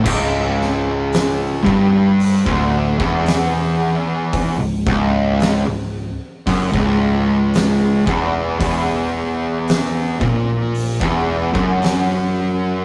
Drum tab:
CC |x---------------|----------------|----------------|
HH |----o---o---o---|o---o---o---o---|o---o---o---o---|
SD |--o-o-------o---|--o-o-------o---|----o-------o---|
BD |o-----o--o-o----|o-o-----oo----o-|o-----o--o-o----|